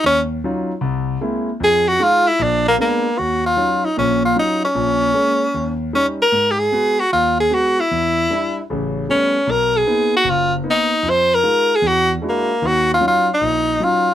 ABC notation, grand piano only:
X:1
M:4/4
L:1/8
Q:"Swing" 1/4=152
K:Ebm
V:1 name="Grand piano"
E,,2 [G,DEF] z =C,,2 [^G,B,=C=E] z | F,,2 [A,EF] z B,,,2 [A,B,C=D] z | E,,2 [G,DEF] z [B,,,B,,]2 [G,DEF] z | [B,,,B,,]2 [A,B,D] z E,,2 [=G,DE] z |
A,,2 [A,CG] z E,,2 [A,CG] z | =E,,2 [=G,=D=E] z [=A,,,^C,]2 [G,=A,=B,^C] z | =B,,,2 [^A,=B,^D] z ^F,,,2 [A,B,D] z | F,,2 [A,EF] z =E,,2 [^G,=D=E^F] z |
[E,,E,]2 [G,DEF] z B,,,2 [G,DEF] z |]